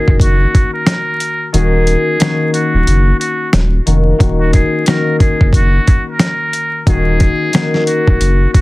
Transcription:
0.00 1.51 D#3 medium
0.00 1.53 A#3 medium
0.00 1.54 C#4 medium
0.00 1.54 F#4 loud
0.00 0.16 G#4 medium
0.08 0.18 F#1 medium
0.08 kick medium
0.20 0.46 F#1 medium
0.20 0.72 F#4 medium
0.20 kick medium
0.20 closed hi-hat loud
0.55 kick medium
0.55 closed hi-hat medium
0.73 1.49 A#4 medium
0.87 snare loud
0.87 snare medium
0.87 closed hi-hat medium
1.20 closed hi-hat medium
1.53 1.96 D#1 loud
1.53 2.18 D#3 medium
1.53 2.16 A#3 medium
1.53 2.16 C#4 medium
1.53 2.17 F#4 loud
1.53 2.50 G#4 loud
1.53 closed hi-hat medium
1.87 closed hi-hat medium
2.19 3.85 D#3 medium
2.19 3.86 A#3 medium
2.19 3.87 C#4 medium
2.19 3.87 F#4 loud
2.19 snare loud
2.19 snare medium
2.19 closed hi-hat loud
2.54 3.16 F#4 medium
2.54 closed hi-hat medium
2.74 2.84 D#1 medium
2.87 3.13 F#1 loud
2.87 closed hi-hat loud
3.20 3.50 F#4 medium
3.20 closed hi-hat medium
3.53 3.80 D#1 medium
3.53 snare loud
3.53 snare medium
3.53 closed hi-hat medium
3.86 4.13 F1 medium
3.86 4.17 D#3 medium
3.86 4.18 A#3 medium
3.86 4.18 C#4 medium
3.86 4.19 F#4 medium
3.86 closed hi-hat medium
4.18 4.62 D#1 loud
4.18 4.85 D#3 medium
4.18 4.82 A#3 medium
4.18 4.82 C#4 medium
4.18 4.83 F#4 loud
4.18 kick loud
4.18 closed hi-hat medium
4.40 4.52 F#4 medium
4.53 4.83 G#4 medium
4.53 kick medium
4.53 closed hi-hat medium
4.86 6.85 D#3 medium
4.86 6.86 A#3 medium
4.86 6.87 C#4 medium
4.86 6.88 F#4 loud
4.86 5.17 A#4 medium
4.86 snare loud
4.86 snare medium
4.86 closed hi-hat loud
5.19 5.50 G#4 medium
5.19 kick loud
5.19 closed hi-hat medium
5.41 5.51 F#1 medium
5.41 kick medium
5.53 5.79 F#1 loud
5.53 6.05 F#4 medium
5.53 kick medium
5.53 closed hi-hat loud
5.87 kick medium
5.87 closed hi-hat medium
6.10 6.84 A#4 medium
6.19 snare loud
6.19 snare medium
6.19 closed hi-hat medium
6.53 closed hi-hat medium
6.86 7.29 D#1 loud
6.86 7.51 D#3 medium
6.86 7.49 A#3 medium
6.86 7.50 C#4 medium
6.86 7.50 F#4 loud
6.86 7.84 G#4 loud
6.86 kick loud
6.86 closed hi-hat medium
7.20 kick medium
7.20 closed hi-hat medium
7.52 8.61 D#3 medium
7.52 8.61 A#3 medium
7.52 8.61 C#4 medium
7.52 8.61 F#4 loud
7.52 snare loud
7.52 snare medium
7.52 closed hi-hat loud
7.74 snare soft
7.86 8.49 F#4 medium
7.86 closed hi-hat medium
8.07 8.18 D#1 medium
8.07 kick medium
8.21 8.46 F#1 loud
8.21 closed hi-hat loud
8.53 8.61 F#4 medium
8.53 kick medium
8.53 closed hi-hat medium

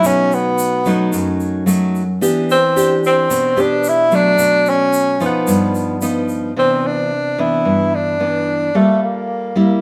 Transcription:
0.00 0.81 F#3 medium
0.00 0.82 A3 medium
0.00 0.82 D#4 medium
0.00 shaker medium
0.04 1.10 B2 medium
0.04 0.35 C#4 medium
0.32 1.41 B3 medium
0.32 shaker soft
0.58 shaker medium
0.85 1.63 F#3 medium
0.85 1.63 A3 medium
0.85 1.63 D#4 medium
0.85 shaker soft
1.12 2.19 F#2 medium
1.12 shaker medium
1.40 shaker soft
1.66 2.02 F#3 medium
1.66 2.02 A3 medium
1.66 2.02 D#4 medium
1.66 shaker medium
1.95 shaker soft
2.21 3.28 E3 medium
2.21 2.57 B3 soft
2.21 2.57 D4 medium
2.21 2.57 G4 medium
2.21 shaker medium
2.50 3.01 C4 medium
2.50 shaker soft
2.76 3.53 D4 medium
2.76 3.53 G4 medium
2.76 shaker medium
3.04 3.62 C4 medium
3.04 shaker soft
3.30 4.36 B2 medium
3.30 shaker medium
3.56 4.07 B3 medium
3.56 4.07 D4 medium
3.56 4.08 G4 medium
3.56 shaker soft
3.61 3.90 D4 medium
3.84 shaker medium
3.88 4.17 E4 medium
4.11 5.16 F#3 soft
4.11 5.17 A3 medium
4.11 4.71 D4 loud
4.11 shaker soft
4.38 5.45 B2 medium
4.38 shaker medium
4.66 5.22 C#4 medium
4.66 shaker soft
4.93 shaker medium
5.20 5.98 F3 medium
5.20 5.98 B3 medium
5.20 5.98 D#4 medium
5.20 shaker soft
5.25 6.28 B3 medium
5.47 6.54 G2 medium
5.47 shaker medium
5.75 shaker soft
6.02 6.52 F3 medium
6.02 6.52 B3 medium
6.02 6.53 D#4 medium
6.02 shaker medium
6.29 shaker soft
6.56 7.63 C3 medium
6.56 7.11 E3 soft
6.56 7.11 B3 soft
6.56 6.88 C4 medium
6.56 7.11 D4 soft
6.86 7.41 D4 medium
7.38 8.16 E3 medium
7.38 8.16 B3 medium
7.38 8.16 D4 medium
7.38 7.96 E4 medium
7.65 8.72 G2 medium
7.95 8.78 D4 medium
8.20 8.70 E3 soft
8.20 8.70 B3 medium
8.20 8.70 D4 soft
8.75 9.54 G3 medium
8.75 9.03 A3 medium
8.75 9.52 A#3 soft
8.75 9.52 F4 soft
8.75 9.52 A4 soft
9.03 9.81 A#3 medium
9.56 9.81 G3 soft
9.56 9.81 A#3 medium
9.56 9.81 E4 medium

